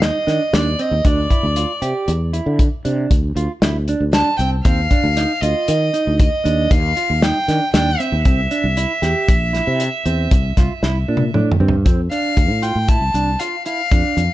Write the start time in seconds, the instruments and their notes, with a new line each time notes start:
0.02 clean electric guitar D#4, violin D#5, snare, closed hi-hat
0.27 fretless electric bass D#3, clean electric guitar D4, snare, closed hi-hat
0.53 fretless electric bass D#2, clean electric guitar D4, violin D5, snare, closed hi-hat
0.79 clean electric guitar C4, violin D#5, closed hi-hat
0.91 fretless electric bass D#2
1.05 fretless electric bass D2, clean electric guitar D4, violin D5, kick, closed hi-hat
1.30 clean electric guitar E4, kick, closed hi-hat
1.43 fretless electric bass D2
1.56 clean electric guitar F4, closed hi-hat
1.82 fretless electric bass C3, clean electric guitar G4, closed hi-hat
2.08 fretless electric bass E2, closed hi-hat
2.33 clean electric guitar E4, closed hi-hat
2.46 fretless electric bass D3
2.59 kick, closed hi-hat
2.85 fretless electric bass C3, clean electric guitar D4, closed hi-hat
3.11 fretless electric bass D2, kick, closed hi-hat
3.36 fretless electric bass D2, clean electric guitar F4, closed hi-hat
3.62 fretless electric bass D2, clean electric guitar E4, snare, closed hi-hat
3.88 clean electric guitar D4, closed hi-hat
4.00 fretless electric bass D2
4.13 clean electric guitar D4, violin A5, snare, closed hi-hat
4.37 fretless electric bass C2, clean electric guitar C4, violin G5, closed hi-hat
4.64 fretless electric bass D#2, clean electric guitar C4, violin F5, kick, closed hi-hat
4.91 clean electric guitar D4, kick, closed hi-hat
5.04 fretless electric bass D2
5.17 clean electric guitar D#4, snare, closed hi-hat
5.41 fretless electric bass D2, clean electric guitar F4, violin D#5, closed hi-hat
5.68 fretless electric bass D#3, closed hi-hat
5.94 clean electric guitar D#4, closed hi-hat
6.07 fretless electric bass D2
6.19 violin D#5, kick, closed hi-hat
6.45 fretless electric bass D#2, clean electric guitar D4, closed hi-hat
6.71 fretless electric bass D#2, violin F5, kick, closed hi-hat
6.97 clean electric guitar F4, closed hi-hat
7.10 fretless electric bass D#2
7.22 clean electric guitar D#4, violin G5, snare, closed hi-hat
7.48 fretless electric bass D#3, clean electric guitar D4, snare, closed hi-hat
7.73 fretless electric bass D#2, clean electric guitar D4, violin G5, snare, closed hi-hat
8.00 clean electric guitar C4, violin E5, closed hi-hat
8.12 fretless electric bass D#2
8.25 fretless electric bass C2, clean electric guitar C4, kick, closed hi-hat
8.51 clean electric guitar D4, closed hi-hat
8.64 fretless electric bass C2
8.77 clean electric guitar E4, closed hi-hat
9.02 fretless electric bass E2, clean electric guitar G4, snare, closed hi-hat
9.28 fretless electric bass A#1, kick, closed hi-hat
9.53 clean electric guitar E4, snare, closed hi-hat
9.67 fretless electric bass C3
9.80 closed hi-hat
10.05 fretless electric bass E2, clean electric guitar C4, closed hi-hat
10.31 fretless electric bass C2, kick, closed hi-hat
10.57 fretless electric bass C2, clean electric guitar F4, kick, snare, closed hi-hat
10.83 fretless electric bass C2, clean electric guitar E4, snare
11.08 fretless electric bass A#2, clean electric guitar D4
11.17 high tom
11.34 fretless electric bass A2, clean electric guitar D4, mid tom
11.52 mid tom
11.60 fretless electric bass G2, clean electric guitar C4
11.68 floor tom
11.85 fretless electric bass F2, clean electric guitar C4, kick, closed hi-hat
12.11 clean electric guitar D4, violin F5, closed hi-hat
12.37 fretless electric bass D2, kick, closed hi-hat
12.50 fretless electric bass A2
12.62 clean electric guitar F4, violin G5, closed hi-hat
12.75 fretless electric bass A2
12.88 clean electric guitar E4, violin A5, kick, closed hi-hat
13.01 fretless electric bass C2
13.14 fretless electric bass C2, clean electric guitar D4, closed hi-hat
13.40 clean electric guitar F4, violin F5, closed hi-hat
13.66 clean electric guitar E4, violin F5, closed hi-hat
13.91 fretless electric bass F2, clean electric guitar D4, kick, closed hi-hat
14.17 fretless electric bass F2, closed hi-hat